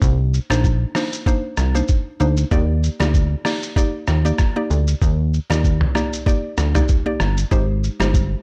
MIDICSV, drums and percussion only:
0, 0, Header, 1, 2, 480
1, 0, Start_track
1, 0, Key_signature, -3, "major"
1, 0, Tempo, 625000
1, 12, Time_signature, 4, 2, 24, 8
1, 6468, End_track
2, 0, Start_track
2, 0, Title_t, "Drums"
2, 12, Note_on_c, 9, 36, 126
2, 12, Note_on_c, 9, 82, 61
2, 89, Note_off_c, 9, 36, 0
2, 89, Note_off_c, 9, 82, 0
2, 258, Note_on_c, 9, 82, 56
2, 335, Note_off_c, 9, 82, 0
2, 387, Note_on_c, 9, 37, 119
2, 392, Note_on_c, 9, 82, 80
2, 464, Note_off_c, 9, 37, 0
2, 469, Note_off_c, 9, 82, 0
2, 492, Note_on_c, 9, 36, 99
2, 492, Note_on_c, 9, 82, 73
2, 569, Note_off_c, 9, 36, 0
2, 569, Note_off_c, 9, 82, 0
2, 729, Note_on_c, 9, 37, 102
2, 740, Note_on_c, 9, 46, 81
2, 740, Note_on_c, 9, 82, 61
2, 806, Note_off_c, 9, 37, 0
2, 816, Note_off_c, 9, 46, 0
2, 816, Note_off_c, 9, 82, 0
2, 865, Note_on_c, 9, 82, 77
2, 941, Note_off_c, 9, 82, 0
2, 970, Note_on_c, 9, 36, 119
2, 979, Note_on_c, 9, 82, 90
2, 1046, Note_off_c, 9, 36, 0
2, 1056, Note_off_c, 9, 82, 0
2, 1204, Note_on_c, 9, 82, 60
2, 1209, Note_on_c, 9, 37, 93
2, 1281, Note_off_c, 9, 82, 0
2, 1286, Note_off_c, 9, 37, 0
2, 1346, Note_on_c, 9, 82, 77
2, 1423, Note_off_c, 9, 82, 0
2, 1443, Note_on_c, 9, 82, 70
2, 1453, Note_on_c, 9, 36, 97
2, 1520, Note_off_c, 9, 82, 0
2, 1530, Note_off_c, 9, 36, 0
2, 1691, Note_on_c, 9, 82, 50
2, 1768, Note_off_c, 9, 82, 0
2, 1819, Note_on_c, 9, 82, 77
2, 1896, Note_off_c, 9, 82, 0
2, 1930, Note_on_c, 9, 82, 63
2, 1931, Note_on_c, 9, 36, 121
2, 2007, Note_off_c, 9, 82, 0
2, 2008, Note_off_c, 9, 36, 0
2, 2177, Note_on_c, 9, 82, 57
2, 2253, Note_off_c, 9, 82, 0
2, 2308, Note_on_c, 9, 37, 122
2, 2312, Note_on_c, 9, 82, 87
2, 2384, Note_off_c, 9, 37, 0
2, 2389, Note_off_c, 9, 82, 0
2, 2412, Note_on_c, 9, 36, 101
2, 2413, Note_on_c, 9, 82, 76
2, 2489, Note_off_c, 9, 36, 0
2, 2489, Note_off_c, 9, 82, 0
2, 2649, Note_on_c, 9, 37, 98
2, 2659, Note_on_c, 9, 46, 89
2, 2659, Note_on_c, 9, 82, 60
2, 2725, Note_off_c, 9, 37, 0
2, 2736, Note_off_c, 9, 46, 0
2, 2736, Note_off_c, 9, 82, 0
2, 2785, Note_on_c, 9, 82, 78
2, 2861, Note_off_c, 9, 82, 0
2, 2889, Note_on_c, 9, 36, 126
2, 2898, Note_on_c, 9, 82, 89
2, 2966, Note_off_c, 9, 36, 0
2, 2975, Note_off_c, 9, 82, 0
2, 3125, Note_on_c, 9, 82, 59
2, 3130, Note_on_c, 9, 37, 99
2, 3202, Note_off_c, 9, 82, 0
2, 3207, Note_off_c, 9, 37, 0
2, 3267, Note_on_c, 9, 82, 77
2, 3343, Note_off_c, 9, 82, 0
2, 3365, Note_on_c, 9, 82, 71
2, 3367, Note_on_c, 9, 37, 97
2, 3373, Note_on_c, 9, 36, 99
2, 3441, Note_off_c, 9, 82, 0
2, 3444, Note_off_c, 9, 37, 0
2, 3450, Note_off_c, 9, 36, 0
2, 3612, Note_on_c, 9, 82, 47
2, 3689, Note_off_c, 9, 82, 0
2, 3742, Note_on_c, 9, 82, 75
2, 3819, Note_off_c, 9, 82, 0
2, 3852, Note_on_c, 9, 36, 127
2, 3852, Note_on_c, 9, 82, 63
2, 3929, Note_off_c, 9, 36, 0
2, 3929, Note_off_c, 9, 82, 0
2, 4099, Note_on_c, 9, 82, 54
2, 4176, Note_off_c, 9, 82, 0
2, 4229, Note_on_c, 9, 37, 122
2, 4234, Note_on_c, 9, 82, 83
2, 4305, Note_off_c, 9, 37, 0
2, 4310, Note_off_c, 9, 82, 0
2, 4333, Note_on_c, 9, 36, 97
2, 4334, Note_on_c, 9, 82, 71
2, 4410, Note_off_c, 9, 36, 0
2, 4411, Note_off_c, 9, 82, 0
2, 4461, Note_on_c, 9, 45, 97
2, 4538, Note_off_c, 9, 45, 0
2, 4571, Note_on_c, 9, 37, 96
2, 4582, Note_on_c, 9, 82, 59
2, 4648, Note_off_c, 9, 37, 0
2, 4659, Note_off_c, 9, 82, 0
2, 4707, Note_on_c, 9, 82, 73
2, 4784, Note_off_c, 9, 82, 0
2, 4810, Note_on_c, 9, 36, 123
2, 4821, Note_on_c, 9, 82, 92
2, 4887, Note_off_c, 9, 36, 0
2, 4898, Note_off_c, 9, 82, 0
2, 5047, Note_on_c, 9, 82, 59
2, 5051, Note_on_c, 9, 37, 93
2, 5123, Note_off_c, 9, 82, 0
2, 5128, Note_off_c, 9, 37, 0
2, 5185, Note_on_c, 9, 45, 102
2, 5187, Note_on_c, 9, 82, 76
2, 5262, Note_off_c, 9, 45, 0
2, 5264, Note_off_c, 9, 82, 0
2, 5286, Note_on_c, 9, 82, 70
2, 5293, Note_on_c, 9, 36, 94
2, 5362, Note_off_c, 9, 82, 0
2, 5370, Note_off_c, 9, 36, 0
2, 5528, Note_on_c, 9, 37, 107
2, 5532, Note_on_c, 9, 82, 49
2, 5605, Note_off_c, 9, 37, 0
2, 5609, Note_off_c, 9, 82, 0
2, 5662, Note_on_c, 9, 82, 73
2, 5739, Note_off_c, 9, 82, 0
2, 5771, Note_on_c, 9, 36, 125
2, 5771, Note_on_c, 9, 82, 64
2, 5847, Note_off_c, 9, 82, 0
2, 5848, Note_off_c, 9, 36, 0
2, 6018, Note_on_c, 9, 82, 55
2, 6095, Note_off_c, 9, 82, 0
2, 6147, Note_on_c, 9, 37, 121
2, 6152, Note_on_c, 9, 82, 83
2, 6224, Note_off_c, 9, 37, 0
2, 6229, Note_off_c, 9, 82, 0
2, 6252, Note_on_c, 9, 36, 99
2, 6252, Note_on_c, 9, 82, 73
2, 6328, Note_off_c, 9, 36, 0
2, 6329, Note_off_c, 9, 82, 0
2, 6468, End_track
0, 0, End_of_file